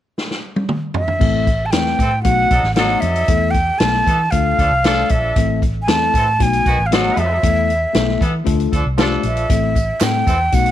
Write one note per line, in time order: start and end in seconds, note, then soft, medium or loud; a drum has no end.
0.18 snare soft
0.31 snare soft
0.56 high tom medium
0.69 mid tom medium
0.94 1.67 E5 medium
0.94 floor tom medium
1.08 floor tom medium
1.19 1.73 A1 medium
1.19 1.47 A3 medium
1.19 1.48 C4 medium
1.19 1.48 E4 medium
1.19 1.48 A4 medium
1.19 kick loud
1.19 crash medium
1.47 kick medium
1.47 closed hi-hat soft
1.66 1.73 A5 medium
1.71 1.94 E2 medium
1.71 2.00 A3 medium
1.71 2.00 C4 medium
1.71 2.00 E4 medium
1.71 2.01 B4 medium
1.71 2.22 G5 medium
1.71 snare medium
1.71 closed hi-hat medium
1.86 snare soft
1.99 2.27 A2 medium
1.99 2.11 E3 medium
1.99 2.11 C4 medium
1.99 2.10 A4 medium
1.99 kick medium
1.99 closed hi-hat medium
2.23 2.46 B1 medium
2.23 2.52 A3 medium
2.23 2.52 B3 medium
2.23 2.52 D#4 medium
2.23 2.52 F#4 medium
2.23 2.72 F#5 loud
2.23 kick medium
2.23 closed hi-hat medium
2.50 2.61 B1 medium
2.50 2.62 F#3 medium
2.50 2.62 D#4 medium
2.50 2.62 A4 medium
2.50 kick medium
2.50 closed hi-hat medium
2.63 2.94 A1 medium
2.63 snare soft
2.75 3.26 F#3 medium
2.75 3.04 A3 medium
2.75 3.04 B3 medium
2.75 3.26 D#4 medium
2.75 3.04 D#4 medium
2.75 3.04 F#4 medium
2.75 3.26 A4 medium
2.75 3.02 F#5 medium
2.75 snare loud
2.75 closed hi-hat medium
3.00 3.23 F2 medium
3.00 3.52 E5 medium
3.00 closed hi-hat medium
3.16 closed hi-hat soft
3.28 3.70 E2 medium
3.28 3.55 A3 medium
3.28 3.55 B3 medium
3.28 3.55 E4 medium
3.28 3.56 A4 medium
3.28 kick loud
3.28 closed hi-hat medium
3.51 3.80 G5 medium
3.51 kick medium
3.51 closed hi-hat soft
3.79 4.01 B1 medium
3.79 4.08 A3 medium
3.79 4.08 B3 medium
3.79 4.08 E4 medium
3.79 4.08 A4 medium
3.79 4.32 A5 medium
3.79 snare loud
3.79 closed hi-hat medium
3.94 snare soft
4.06 4.27 E3 medium
4.06 4.18 E3 medium
4.06 4.18 B3 medium
4.06 4.18 A4 medium
4.06 kick medium
4.06 closed hi-hat medium
4.31 4.53 D2 medium
4.31 4.59 A3 medium
4.31 4.59 D4 medium
4.31 4.60 F4 medium
4.31 4.60 A4 medium
4.31 5.12 F5 medium
4.31 kick medium
4.31 closed hi-hat medium
4.59 4.69 D2 medium
4.59 4.70 F3 medium
4.59 4.70 D4 medium
4.59 4.70 A4 medium
4.59 kick medium
4.59 closed hi-hat medium
4.71 5.02 C2 medium
4.84 5.34 F3 medium
4.84 5.11 A3 medium
4.84 5.34 D4 medium
4.84 5.12 D4 medium
4.84 5.12 F4 medium
4.84 5.34 A4 medium
4.84 5.12 A4 medium
4.84 snare loud
4.84 closed hi-hat medium
5.09 5.31 A#1 medium
5.09 5.61 E5 medium
5.09 kick medium
5.09 closed hi-hat medium
5.36 5.88 A1 medium
5.36 5.63 A3 medium
5.36 5.63 C4 medium
5.36 5.63 E4 medium
5.36 5.64 A4 medium
5.36 kick loud
5.36 closed hi-hat medium
5.62 kick medium
5.62 closed hi-hat soft
5.82 5.90 G#5 medium
5.88 6.08 E2 medium
5.88 6.15 A3 medium
5.88 6.15 C4 medium
5.88 6.15 E4 medium
5.88 6.15 A4 medium
5.88 6.44 A5 loud
5.88 snare loud
5.88 closed hi-hat medium
6.14 6.42 A2 medium
6.14 6.26 E3 medium
6.14 6.25 C4 medium
6.14 6.26 A4 medium
6.14 kick medium
6.14 closed hi-hat medium
6.39 6.61 B1 medium
6.39 6.66 A3 medium
6.39 6.66 B3 medium
6.39 6.67 D#4 medium
6.39 6.67 F#4 medium
6.39 6.88 G#5 loud
6.39 kick medium
6.39 closed hi-hat medium
6.53 closed hi-hat soft
6.66 6.76 B1 medium
6.66 6.78 D#3 medium
6.66 6.78 B3 medium
6.66 6.77 F#4 medium
6.66 kick medium
6.66 closed hi-hat medium
6.78 7.09 A1 medium
6.86 6.95 F5 medium
6.91 7.41 F#3 medium
6.91 7.18 A3 medium
6.91 7.18 B3 medium
6.91 7.40 D#4 medium
6.91 7.18 D#4 medium
6.91 7.19 F#4 medium
6.91 7.41 A4 medium
6.91 7.20 F#5 medium
6.91 snare loud
6.91 closed hi-hat medium
7.17 7.38 F2 medium
7.17 8.21 E5 medium
7.17 closed hi-hat medium
7.43 7.84 E2 loud
7.43 7.70 A3 medium
7.43 7.70 B3 medium
7.43 7.70 E4 medium
7.43 7.71 A4 medium
7.43 kick medium
7.43 closed hi-hat medium
7.70 closed hi-hat soft
7.93 8.15 B1 medium
7.93 8.21 A3 medium
7.93 8.21 B3 medium
7.93 8.21 E4 medium
7.93 8.22 A4 medium
7.93 snare loud
7.93 closed hi-hat medium
8.09 snare soft
8.20 8.41 E3 medium
8.20 8.32 E3 medium
8.20 8.31 B3 medium
8.20 8.31 A4 medium
8.20 kick medium
8.20 closed hi-hat medium
8.44 8.67 D2 medium
8.44 8.72 A3 medium
8.44 8.73 D4 medium
8.44 8.73 F4 medium
8.44 8.73 A4 medium
8.44 kick medium
8.44 closed hi-hat medium
8.60 closed hi-hat soft
8.73 8.83 D2 medium
8.73 8.84 F3 medium
8.73 8.84 D4 medium
8.73 8.83 A4 medium
8.73 kick medium
8.73 closed hi-hat medium
8.85 9.16 C2 medium
8.98 9.47 F3 medium
8.98 9.25 A3 medium
8.98 9.25 D4 medium
8.98 9.47 D4 medium
8.98 9.25 F4 medium
8.98 9.25 G4 medium
8.98 9.47 A4 medium
8.98 snare loud
8.98 closed hi-hat medium
9.23 9.44 A#1 medium
9.23 10.04 E5 medium
9.23 closed hi-hat medium
9.37 closed hi-hat soft
9.49 9.91 A1 medium
9.49 9.76 A3 medium
9.49 9.77 C4 medium
9.49 9.77 E4 medium
9.49 9.77 A4 medium
9.49 kick loud
9.49 closed hi-hat medium
9.49 tambourine soft
9.75 kick medium
9.75 closed hi-hat medium
9.75 tambourine soft
10.01 10.22 A2 medium
10.01 10.28 A3 medium
10.01 10.28 C4 medium
10.01 10.28 E4 medium
10.01 10.29 A4 medium
10.01 10.56 G5 medium
10.01 snare loud
10.01 clap loud
10.01 closed hi-hat medium
10.01 tambourine medium
10.26 10.48 E2 medium
10.26 10.38 E3 medium
10.26 10.38 C4 medium
10.26 10.38 A4 medium
10.26 kick medium
10.26 closed hi-hat medium
10.26 tambourine medium
10.52 10.71 B1 medium
10.52 10.71 A3 medium
10.52 10.71 B3 medium
10.52 10.71 D#4 medium
10.52 10.71 F#4 medium
10.52 10.71 F#5 medium
10.52 kick medium
10.52 closed hi-hat medium
10.52 tambourine soft
10.66 closed hi-hat soft